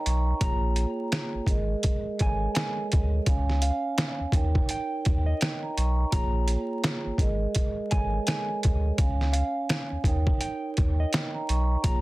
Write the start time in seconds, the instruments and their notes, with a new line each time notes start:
Already playing: vibraphone D#4 A#4 C#5 D#5 G5 A#5
0.05 sub bass B1, vibraphone A#5 C#6, closed hi-hat
0.27 vibraphone G5 A#5
0.39 sub bass A#1, vibraphone A#3 F4 G#4 C#5, clean electric guitar A#5, kick, closed hi-hat
0.76 closed hi-hat
1.12 snare, closed hi-hat
1.35 sub bass G#1
1.47 sub bass G#1, vibraphone G#3 G#4 A#4 D#5, kick, closed hi-hat
1.83 kick, closed hi-hat
2.18 sub bass G#1, vibraphone G#3 G#4 A4 C#5, clean electric guitar G#5, kick, closed hi-hat
2.26 vibraphone A#4
2.55 clean electric guitar G#5, snare, closed hi-hat
2.92 sub bass D2, kick, closed hi-hat
3.26 sub bass C#2, vibraphone C#4 C#5 F5 G#5, kick, closed hi-hat
3.50 snare
3.62 clean electric guitar F5, closed hi-hat
3.98 snare, closed hi-hat
4.20 sub bass D#2
4.32 sub bass D#2, vibraphone D#4 A#4 C#5 G5, kick, closed hi-hat
4.55 kick
4.69 clean electric guitar G5, closed hi-hat
5.05 sub bass D#2, kick, closed hi-hat
5.26 clean electric guitar D#5
5.41 vibraphone G5, snare, closed hi-hat
5.63 vibraphone G5 A#5
5.77 sub bass B1, vibraphone C#6, closed hi-hat
5.99 vibraphone G5 A#5
6.11 sub bass A#1, vibraphone A#3 F4 G#4, clean electric guitar A#5, kick, closed hi-hat
6.48 closed hi-hat
6.84 snare, closed hi-hat
7.06 sub bass G#1
7.18 sub bass G#1, vibraphone G#3 G#4 A#4 D#5, kick, closed hi-hat
7.55 kick, closed hi-hat
7.90 sub bass G#1, vibraphone G#3 G#4 A4 C#5, clean electric guitar G#5, kick, closed hi-hat
7.98 vibraphone A#4
8.27 clean electric guitar G#5, snare, closed hi-hat
8.63 sub bass D2, kick, closed hi-hat
8.97 sub bass C#2, vibraphone C#4 C#5 F5 G#5, kick, closed hi-hat
9.21 snare
9.33 clean electric guitar F5, closed hi-hat
9.69 snare, closed hi-hat
9.92 sub bass D#2
10.04 sub bass D#2, vibraphone D#4 A#4 C#5 G5, kick, closed hi-hat
10.27 kick
10.41 clean electric guitar G5, closed hi-hat
10.77 sub bass D#2, kick, closed hi-hat
11.00 clean electric guitar D#5
11.13 vibraphone D#5, snare, closed hi-hat
11.34 vibraphone G5 A#5
11.49 sub bass B1, vibraphone A#5 C#6, closed hi-hat
11.70 vibraphone G5 A#5
11.83 sub bass A#1, vibraphone A#3 F4 G#4, clean electric guitar A#5, kick, closed hi-hat